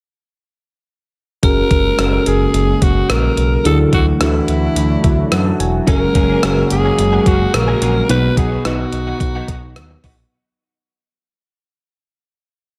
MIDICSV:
0, 0, Header, 1, 8, 480
1, 0, Start_track
1, 0, Key_signature, 6, "major"
1, 0, Tempo, 555556
1, 1235, Time_signature, 4, 2, 24, 8
1, 11046, End_track
2, 0, Start_track
2, 0, Title_t, "Alto saxophone"
2, 0, Program_c, 0, 65
2, 1247, Note_on_c, 0, 70, 108
2, 1968, Note_on_c, 0, 68, 91
2, 1981, Note_off_c, 0, 70, 0
2, 2446, Note_on_c, 0, 66, 81
2, 2459, Note_off_c, 0, 68, 0
2, 2679, Note_on_c, 0, 70, 95
2, 2692, Note_off_c, 0, 66, 0
2, 3157, Note_off_c, 0, 70, 0
2, 3165, Note_on_c, 0, 69, 97
2, 3270, Note_off_c, 0, 69, 0
2, 3404, Note_on_c, 0, 66, 85
2, 3510, Note_off_c, 0, 66, 0
2, 3645, Note_on_c, 0, 64, 81
2, 4805, Note_off_c, 0, 64, 0
2, 5087, Note_on_c, 0, 70, 101
2, 5766, Note_off_c, 0, 70, 0
2, 5807, Note_on_c, 0, 68, 89
2, 6284, Note_on_c, 0, 66, 83
2, 6297, Note_off_c, 0, 68, 0
2, 6519, Note_on_c, 0, 70, 97
2, 6532, Note_off_c, 0, 66, 0
2, 6997, Note_off_c, 0, 70, 0
2, 7000, Note_on_c, 0, 71, 112
2, 7221, Note_off_c, 0, 71, 0
2, 7240, Note_on_c, 0, 68, 87
2, 7461, Note_off_c, 0, 68, 0
2, 7480, Note_on_c, 0, 66, 81
2, 8643, Note_off_c, 0, 66, 0
2, 11046, End_track
3, 0, Start_track
3, 0, Title_t, "FM electric piano"
3, 0, Program_c, 1, 5
3, 1232, Note_on_c, 1, 61, 66
3, 1236, Note_on_c, 1, 66, 59
3, 1238, Note_on_c, 1, 68, 64
3, 1242, Note_on_c, 1, 70, 76
3, 1377, Control_c, 1, 64, 127
3, 1622, Note_off_c, 1, 61, 0
3, 1623, Note_off_c, 1, 66, 0
3, 1624, Note_off_c, 1, 68, 0
3, 1627, Note_off_c, 1, 70, 0
3, 1713, Note_on_c, 1, 61, 68
3, 1717, Note_on_c, 1, 66, 63
3, 1718, Note_on_c, 1, 68, 58
3, 1724, Note_on_c, 1, 69, 59
3, 1776, Note_off_c, 1, 69, 0
3, 1780, Note_on_c, 1, 70, 72
3, 2490, Note_off_c, 1, 61, 0
3, 2492, Note_off_c, 1, 66, 0
3, 2493, Note_off_c, 1, 68, 0
3, 2523, Note_off_c, 1, 70, 0
3, 3151, Note_on_c, 1, 62, 69
3, 3156, Note_on_c, 1, 64, 63
3, 3157, Note_on_c, 1, 50, 58
3, 3158, Note_on_c, 1, 66, 62
3, 3163, Note_on_c, 1, 68, 59
3, 3166, Control_c, 1, 64, 0
3, 3215, Note_off_c, 1, 68, 0
3, 3218, Note_on_c, 1, 69, 75
3, 3340, Control_c, 1, 64, 127
3, 3541, Note_off_c, 1, 62, 0
3, 3544, Note_off_c, 1, 64, 0
3, 3544, Note_off_c, 1, 66, 0
3, 3575, Note_off_c, 1, 69, 0
3, 3633, Note_on_c, 1, 62, 71
3, 3634, Note_on_c, 1, 64, 65
3, 3639, Note_on_c, 1, 66, 64
3, 3642, Note_on_c, 1, 69, 75
3, 3842, Note_off_c, 1, 50, 0
3, 4353, Note_on_c, 1, 76, 66
3, 4410, Note_off_c, 1, 62, 0
3, 4411, Note_off_c, 1, 64, 0
3, 4413, Note_off_c, 1, 66, 0
3, 4415, Note_off_c, 1, 69, 0
3, 4577, Note_off_c, 1, 76, 0
3, 4595, Note_on_c, 1, 78, 65
3, 4707, Note_off_c, 1, 78, 0
3, 4716, Note_on_c, 1, 81, 65
3, 4827, Note_off_c, 1, 81, 0
3, 4838, Note_on_c, 1, 80, 64
3, 5059, Note_off_c, 1, 80, 0
3, 5067, Note_on_c, 1, 61, 70
3, 5072, Note_on_c, 1, 66, 62
3, 5074, Note_on_c, 1, 68, 65
3, 5077, Note_on_c, 1, 70, 80
3, 5088, Control_c, 1, 64, 0
3, 5242, Control_c, 1, 64, 127
3, 5459, Note_off_c, 1, 61, 0
3, 5461, Note_off_c, 1, 66, 0
3, 5463, Note_off_c, 1, 68, 0
3, 5464, Note_off_c, 1, 70, 0
3, 5553, Note_on_c, 1, 61, 66
3, 5556, Note_on_c, 1, 66, 63
3, 5558, Note_on_c, 1, 68, 63
3, 5561, Note_on_c, 1, 70, 78
3, 6330, Note_off_c, 1, 61, 0
3, 6332, Note_off_c, 1, 66, 0
3, 6333, Note_off_c, 1, 68, 0
3, 6334, Note_off_c, 1, 70, 0
3, 6988, Note_on_c, 1, 59, 68
3, 6992, Note_on_c, 1, 63, 64
3, 6995, Note_on_c, 1, 47, 57
3, 6998, Note_on_c, 1, 66, 59
3, 7000, Note_on_c, 1, 71, 76
3, 7006, Control_c, 1, 64, 0
3, 7176, Control_c, 1, 64, 127
3, 7380, Note_off_c, 1, 59, 0
3, 7382, Note_off_c, 1, 63, 0
3, 7385, Note_off_c, 1, 66, 0
3, 7385, Note_off_c, 1, 71, 0
3, 7471, Note_on_c, 1, 59, 70
3, 7475, Note_on_c, 1, 63, 61
3, 7479, Note_on_c, 1, 66, 60
3, 7482, Note_on_c, 1, 71, 75
3, 7680, Note_off_c, 1, 47, 0
3, 8249, Note_off_c, 1, 59, 0
3, 8251, Note_off_c, 1, 63, 0
3, 8253, Note_off_c, 1, 66, 0
3, 8255, Note_off_c, 1, 71, 0
3, 8926, Control_c, 1, 64, 0
3, 11046, End_track
4, 0, Start_track
4, 0, Title_t, "Clean electric guitar"
4, 0, Program_c, 2, 27
4, 5070, Note_on_c, 2, 54, 84
4, 5075, Note_on_c, 2, 58, 82
4, 5077, Note_on_c, 2, 61, 80
4, 5081, Note_on_c, 2, 68, 78
4, 5180, Note_off_c, 2, 68, 0
4, 5185, Note_off_c, 2, 61, 0
4, 5190, Note_off_c, 2, 58, 0
4, 5244, Note_off_c, 2, 54, 0
4, 5310, Note_on_c, 2, 54, 62
4, 5314, Note_on_c, 2, 58, 61
4, 5318, Note_on_c, 2, 61, 60
4, 5321, Note_on_c, 2, 68, 64
4, 5420, Note_off_c, 2, 68, 0
4, 5423, Note_off_c, 2, 61, 0
4, 5428, Note_off_c, 2, 58, 0
4, 5430, Note_off_c, 2, 54, 0
4, 5430, Note_on_c, 2, 68, 65
4, 5433, Note_on_c, 2, 61, 61
4, 5438, Note_on_c, 2, 58, 60
4, 5440, Note_on_c, 2, 54, 48
4, 5537, Note_off_c, 2, 54, 0
4, 5540, Note_off_c, 2, 58, 0
4, 5546, Note_off_c, 2, 61, 0
4, 5546, Note_off_c, 2, 68, 0
4, 5548, Note_on_c, 2, 54, 78
4, 5551, Note_on_c, 2, 58, 73
4, 5556, Note_on_c, 2, 61, 76
4, 5556, Note_on_c, 2, 68, 82
4, 5664, Note_off_c, 2, 68, 0
4, 5666, Note_off_c, 2, 61, 0
4, 5671, Note_off_c, 2, 58, 0
4, 5722, Note_off_c, 2, 54, 0
4, 5915, Note_on_c, 2, 68, 58
4, 5919, Note_on_c, 2, 61, 56
4, 5922, Note_on_c, 2, 58, 51
4, 5927, Note_on_c, 2, 54, 50
4, 6026, Note_off_c, 2, 54, 0
4, 6029, Note_off_c, 2, 58, 0
4, 6032, Note_off_c, 2, 61, 0
4, 6033, Note_off_c, 2, 68, 0
4, 6153, Note_on_c, 2, 68, 78
4, 6157, Note_on_c, 2, 61, 68
4, 6161, Note_on_c, 2, 58, 68
4, 6164, Note_on_c, 2, 54, 58
4, 6261, Note_off_c, 2, 54, 0
4, 6266, Note_off_c, 2, 58, 0
4, 6269, Note_off_c, 2, 61, 0
4, 6272, Note_on_c, 2, 54, 63
4, 6273, Note_off_c, 2, 68, 0
4, 6276, Note_on_c, 2, 58, 65
4, 6280, Note_on_c, 2, 61, 68
4, 6283, Note_on_c, 2, 68, 65
4, 6383, Note_off_c, 2, 68, 0
4, 6387, Note_off_c, 2, 61, 0
4, 6390, Note_off_c, 2, 58, 0
4, 6407, Note_off_c, 2, 54, 0
4, 6629, Note_on_c, 2, 68, 66
4, 6634, Note_on_c, 2, 61, 57
4, 6637, Note_on_c, 2, 58, 58
4, 6641, Note_on_c, 2, 54, 50
4, 6738, Note_off_c, 2, 54, 0
4, 6743, Note_off_c, 2, 58, 0
4, 6746, Note_off_c, 2, 61, 0
4, 6749, Note_off_c, 2, 68, 0
4, 6749, Note_on_c, 2, 54, 75
4, 6753, Note_on_c, 2, 58, 80
4, 6756, Note_on_c, 2, 61, 74
4, 6759, Note_on_c, 2, 68, 82
4, 6861, Note_off_c, 2, 68, 0
4, 6868, Note_off_c, 2, 61, 0
4, 6871, Note_off_c, 2, 58, 0
4, 6923, Note_off_c, 2, 54, 0
4, 6989, Note_on_c, 2, 54, 69
4, 6993, Note_on_c, 2, 59, 74
4, 6996, Note_on_c, 2, 63, 72
4, 6999, Note_on_c, 2, 66, 77
4, 7103, Note_off_c, 2, 66, 0
4, 7105, Note_off_c, 2, 63, 0
4, 7109, Note_off_c, 2, 59, 0
4, 7163, Note_off_c, 2, 54, 0
4, 7232, Note_on_c, 2, 54, 63
4, 7237, Note_on_c, 2, 59, 65
4, 7240, Note_on_c, 2, 63, 61
4, 7244, Note_on_c, 2, 66, 64
4, 7342, Note_off_c, 2, 66, 0
4, 7347, Note_off_c, 2, 63, 0
4, 7351, Note_off_c, 2, 59, 0
4, 7353, Note_off_c, 2, 54, 0
4, 7353, Note_on_c, 2, 66, 64
4, 7357, Note_on_c, 2, 63, 55
4, 7361, Note_on_c, 2, 59, 51
4, 7363, Note_on_c, 2, 54, 49
4, 7467, Note_off_c, 2, 54, 0
4, 7472, Note_off_c, 2, 59, 0
4, 7474, Note_off_c, 2, 63, 0
4, 7477, Note_on_c, 2, 54, 77
4, 7479, Note_off_c, 2, 66, 0
4, 7482, Note_on_c, 2, 59, 79
4, 7484, Note_on_c, 2, 63, 84
4, 7489, Note_on_c, 2, 66, 83
4, 7585, Note_off_c, 2, 66, 0
4, 7591, Note_off_c, 2, 63, 0
4, 7592, Note_off_c, 2, 59, 0
4, 7647, Note_off_c, 2, 54, 0
4, 7836, Note_on_c, 2, 66, 61
4, 7840, Note_on_c, 2, 63, 54
4, 7845, Note_on_c, 2, 59, 47
4, 7846, Note_on_c, 2, 54, 48
4, 7946, Note_off_c, 2, 54, 0
4, 7950, Note_off_c, 2, 59, 0
4, 7952, Note_off_c, 2, 63, 0
4, 7955, Note_off_c, 2, 66, 0
4, 8079, Note_on_c, 2, 66, 73
4, 8082, Note_on_c, 2, 63, 72
4, 8087, Note_on_c, 2, 59, 69
4, 8090, Note_on_c, 2, 54, 59
4, 8184, Note_off_c, 2, 54, 0
4, 8190, Note_off_c, 2, 59, 0
4, 8192, Note_off_c, 2, 63, 0
4, 8195, Note_on_c, 2, 54, 64
4, 8196, Note_off_c, 2, 66, 0
4, 8200, Note_on_c, 2, 59, 61
4, 8202, Note_on_c, 2, 63, 69
4, 8206, Note_on_c, 2, 66, 70
4, 8303, Note_off_c, 2, 66, 0
4, 8308, Note_off_c, 2, 63, 0
4, 8311, Note_off_c, 2, 59, 0
4, 8329, Note_off_c, 2, 54, 0
4, 8673, Note_on_c, 2, 54, 72
4, 8678, Note_on_c, 2, 59, 78
4, 8681, Note_on_c, 2, 63, 86
4, 8685, Note_on_c, 2, 66, 80
4, 8783, Note_off_c, 2, 66, 0
4, 8787, Note_off_c, 2, 63, 0
4, 8790, Note_off_c, 2, 59, 0
4, 8845, Note_off_c, 2, 54, 0
4, 11046, End_track
5, 0, Start_track
5, 0, Title_t, "Analog synth pad"
5, 0, Program_c, 3, 89
5, 1239, Note_on_c, 3, 49, 75
5, 1239, Note_on_c, 3, 58, 65
5, 1241, Note_on_c, 3, 54, 68
5, 1241, Note_on_c, 3, 56, 67
5, 1241, Note_on_c, 3, 66, 80
5, 3138, Note_off_c, 3, 49, 0
5, 3138, Note_off_c, 3, 58, 0
5, 3139, Note_off_c, 3, 54, 0
5, 3139, Note_off_c, 3, 56, 0
5, 3160, Note_on_c, 3, 54, 69
5, 3161, Note_on_c, 3, 52, 70
5, 3161, Note_on_c, 3, 62, 69
5, 3163, Note_on_c, 3, 57, 65
5, 5059, Note_off_c, 3, 52, 0
5, 5059, Note_off_c, 3, 62, 0
5, 5060, Note_off_c, 3, 57, 0
5, 5075, Note_on_c, 3, 56, 71
5, 5075, Note_on_c, 3, 58, 70
5, 5080, Note_on_c, 3, 49, 73
5, 6963, Note_off_c, 3, 66, 0
5, 6976, Note_off_c, 3, 56, 0
5, 6976, Note_off_c, 3, 58, 0
5, 6978, Note_off_c, 3, 49, 0
5, 6991, Note_on_c, 3, 59, 69
5, 6993, Note_on_c, 3, 63, 83
5, 8883, Note_off_c, 3, 54, 0
5, 8894, Note_off_c, 3, 59, 0
5, 8895, Note_off_c, 3, 63, 0
5, 11046, End_track
6, 0, Start_track
6, 0, Title_t, "Analog synth bass"
6, 0, Program_c, 4, 38
6, 1239, Note_on_c, 4, 30, 95
6, 1410, Note_off_c, 4, 30, 0
6, 1477, Note_on_c, 4, 30, 93
6, 1649, Note_off_c, 4, 30, 0
6, 1716, Note_on_c, 4, 30, 101
6, 1888, Note_off_c, 4, 30, 0
6, 1960, Note_on_c, 4, 30, 96
6, 2131, Note_off_c, 4, 30, 0
6, 2196, Note_on_c, 4, 30, 109
6, 2368, Note_off_c, 4, 30, 0
6, 2435, Note_on_c, 4, 30, 105
6, 2608, Note_off_c, 4, 30, 0
6, 2679, Note_on_c, 4, 34, 97
6, 2850, Note_off_c, 4, 34, 0
6, 2917, Note_on_c, 4, 35, 89
6, 3089, Note_off_c, 4, 35, 0
6, 3156, Note_on_c, 4, 38, 97
6, 3328, Note_off_c, 4, 38, 0
6, 3394, Note_on_c, 4, 38, 109
6, 3567, Note_off_c, 4, 38, 0
6, 3633, Note_on_c, 4, 38, 97
6, 3807, Note_off_c, 4, 38, 0
6, 3873, Note_on_c, 4, 38, 100
6, 4046, Note_off_c, 4, 38, 0
6, 4111, Note_on_c, 4, 38, 107
6, 4285, Note_off_c, 4, 38, 0
6, 4356, Note_on_c, 4, 38, 92
6, 4529, Note_off_c, 4, 38, 0
6, 4593, Note_on_c, 4, 42, 96
6, 4767, Note_off_c, 4, 42, 0
6, 4836, Note_on_c, 4, 28, 89
6, 5008, Note_off_c, 4, 28, 0
6, 5078, Note_on_c, 4, 30, 96
6, 5249, Note_off_c, 4, 30, 0
6, 5315, Note_on_c, 4, 30, 100
6, 5488, Note_off_c, 4, 30, 0
6, 5559, Note_on_c, 4, 30, 96
6, 5730, Note_off_c, 4, 30, 0
6, 5798, Note_on_c, 4, 30, 98
6, 5970, Note_off_c, 4, 30, 0
6, 6037, Note_on_c, 4, 30, 108
6, 6209, Note_off_c, 4, 30, 0
6, 6275, Note_on_c, 4, 30, 107
6, 6448, Note_off_c, 4, 30, 0
6, 6519, Note_on_c, 4, 34, 98
6, 6690, Note_off_c, 4, 34, 0
6, 6756, Note_on_c, 4, 34, 83
6, 6928, Note_off_c, 4, 34, 0
6, 6995, Note_on_c, 4, 35, 104
6, 7167, Note_off_c, 4, 35, 0
6, 7235, Note_on_c, 4, 35, 97
6, 7407, Note_off_c, 4, 35, 0
6, 7478, Note_on_c, 4, 35, 93
6, 7650, Note_off_c, 4, 35, 0
6, 7715, Note_on_c, 4, 35, 89
6, 7888, Note_off_c, 4, 35, 0
6, 7953, Note_on_c, 4, 35, 101
6, 8127, Note_off_c, 4, 35, 0
6, 8194, Note_on_c, 4, 35, 94
6, 8433, Note_on_c, 4, 39, 99
6, 8446, Note_off_c, 4, 35, 0
6, 8607, Note_off_c, 4, 39, 0
6, 8675, Note_on_c, 4, 34, 82
6, 8847, Note_off_c, 4, 34, 0
6, 11046, End_track
7, 0, Start_track
7, 0, Title_t, "Muted clean electric guitar strokes"
7, 5191, Note_on_c, 9, 29, 44
7, 5277, Note_off_c, 9, 29, 0
7, 5674, Note_on_c, 9, 29, 50
7, 5760, Note_off_c, 9, 29, 0
7, 5795, Note_on_c, 9, 29, 37
7, 5881, Note_off_c, 9, 29, 0
7, 6037, Note_on_c, 9, 29, 43
7, 6123, Note_off_c, 9, 29, 0
7, 6393, Note_on_c, 9, 29, 52
7, 6480, Note_off_c, 9, 29, 0
7, 6511, Note_on_c, 9, 29, 44
7, 6598, Note_off_c, 9, 29, 0
7, 6871, Note_on_c, 9, 29, 48
7, 6958, Note_off_c, 9, 29, 0
7, 7114, Note_on_c, 9, 29, 44
7, 7200, Note_off_c, 9, 29, 0
7, 7596, Note_on_c, 9, 29, 47
7, 7682, Note_off_c, 9, 29, 0
7, 7716, Note_on_c, 9, 29, 36
7, 7802, Note_off_c, 9, 29, 0
7, 7956, Note_on_c, 9, 29, 41
7, 8043, Note_off_c, 9, 29, 0
7, 8313, Note_on_c, 9, 29, 46
7, 8400, Note_off_c, 9, 29, 0
7, 8554, Note_on_c, 9, 29, 47
7, 8641, Note_off_c, 9, 29, 0
7, 8793, Note_on_c, 9, 29, 44
7, 8879, Note_off_c, 9, 29, 0
7, 11046, End_track
8, 0, Start_track
8, 0, Title_t, "Drums"
8, 1236, Note_on_c, 9, 36, 100
8, 1236, Note_on_c, 9, 42, 88
8, 1323, Note_off_c, 9, 36, 0
8, 1323, Note_off_c, 9, 42, 0
8, 1475, Note_on_c, 9, 36, 87
8, 1475, Note_on_c, 9, 42, 58
8, 1561, Note_off_c, 9, 42, 0
8, 1562, Note_off_c, 9, 36, 0
8, 1716, Note_on_c, 9, 37, 92
8, 1717, Note_on_c, 9, 42, 82
8, 1803, Note_off_c, 9, 37, 0
8, 1804, Note_off_c, 9, 42, 0
8, 1955, Note_on_c, 9, 42, 69
8, 2042, Note_off_c, 9, 42, 0
8, 2196, Note_on_c, 9, 42, 81
8, 2282, Note_off_c, 9, 42, 0
8, 2435, Note_on_c, 9, 36, 79
8, 2435, Note_on_c, 9, 42, 73
8, 2521, Note_off_c, 9, 36, 0
8, 2522, Note_off_c, 9, 42, 0
8, 2675, Note_on_c, 9, 37, 93
8, 2676, Note_on_c, 9, 42, 94
8, 2762, Note_off_c, 9, 37, 0
8, 2762, Note_off_c, 9, 42, 0
8, 2915, Note_on_c, 9, 42, 67
8, 3002, Note_off_c, 9, 42, 0
8, 3156, Note_on_c, 9, 42, 87
8, 3242, Note_off_c, 9, 42, 0
8, 3394, Note_on_c, 9, 36, 92
8, 3394, Note_on_c, 9, 42, 61
8, 3480, Note_off_c, 9, 36, 0
8, 3480, Note_off_c, 9, 42, 0
8, 3634, Note_on_c, 9, 37, 96
8, 3635, Note_on_c, 9, 42, 84
8, 3721, Note_off_c, 9, 37, 0
8, 3722, Note_off_c, 9, 42, 0
8, 3873, Note_on_c, 9, 42, 67
8, 3959, Note_off_c, 9, 42, 0
8, 4116, Note_on_c, 9, 42, 84
8, 4202, Note_off_c, 9, 42, 0
8, 4354, Note_on_c, 9, 42, 68
8, 4355, Note_on_c, 9, 36, 77
8, 4441, Note_off_c, 9, 36, 0
8, 4441, Note_off_c, 9, 42, 0
8, 4595, Note_on_c, 9, 37, 91
8, 4595, Note_on_c, 9, 42, 93
8, 4681, Note_off_c, 9, 37, 0
8, 4682, Note_off_c, 9, 42, 0
8, 4840, Note_on_c, 9, 42, 72
8, 4926, Note_off_c, 9, 42, 0
8, 5076, Note_on_c, 9, 36, 102
8, 5077, Note_on_c, 9, 42, 88
8, 5162, Note_off_c, 9, 36, 0
8, 5164, Note_off_c, 9, 42, 0
8, 5314, Note_on_c, 9, 36, 83
8, 5314, Note_on_c, 9, 42, 61
8, 5400, Note_off_c, 9, 36, 0
8, 5400, Note_off_c, 9, 42, 0
8, 5556, Note_on_c, 9, 37, 96
8, 5557, Note_on_c, 9, 42, 87
8, 5642, Note_off_c, 9, 37, 0
8, 5643, Note_off_c, 9, 42, 0
8, 5793, Note_on_c, 9, 42, 71
8, 5879, Note_off_c, 9, 42, 0
8, 6035, Note_on_c, 9, 42, 85
8, 6122, Note_off_c, 9, 42, 0
8, 6274, Note_on_c, 9, 36, 80
8, 6275, Note_on_c, 9, 42, 72
8, 6360, Note_off_c, 9, 36, 0
8, 6361, Note_off_c, 9, 42, 0
8, 6515, Note_on_c, 9, 37, 93
8, 6516, Note_on_c, 9, 42, 97
8, 6601, Note_off_c, 9, 37, 0
8, 6602, Note_off_c, 9, 42, 0
8, 6755, Note_on_c, 9, 42, 69
8, 6841, Note_off_c, 9, 42, 0
8, 6994, Note_on_c, 9, 42, 88
8, 7080, Note_off_c, 9, 42, 0
8, 7233, Note_on_c, 9, 36, 85
8, 7235, Note_on_c, 9, 42, 66
8, 7319, Note_off_c, 9, 36, 0
8, 7322, Note_off_c, 9, 42, 0
8, 7475, Note_on_c, 9, 37, 94
8, 7476, Note_on_c, 9, 42, 85
8, 7561, Note_off_c, 9, 37, 0
8, 7562, Note_off_c, 9, 42, 0
8, 7712, Note_on_c, 9, 42, 70
8, 7798, Note_off_c, 9, 42, 0
8, 7951, Note_on_c, 9, 36, 81
8, 7954, Note_on_c, 9, 42, 85
8, 8037, Note_off_c, 9, 36, 0
8, 8041, Note_off_c, 9, 42, 0
8, 8193, Note_on_c, 9, 36, 76
8, 8194, Note_on_c, 9, 42, 71
8, 8279, Note_off_c, 9, 36, 0
8, 8281, Note_off_c, 9, 42, 0
8, 8434, Note_on_c, 9, 37, 97
8, 8435, Note_on_c, 9, 42, 93
8, 8520, Note_off_c, 9, 37, 0
8, 8521, Note_off_c, 9, 42, 0
8, 8673, Note_on_c, 9, 36, 90
8, 8674, Note_on_c, 9, 46, 70
8, 8759, Note_off_c, 9, 36, 0
8, 8760, Note_off_c, 9, 46, 0
8, 11046, End_track
0, 0, End_of_file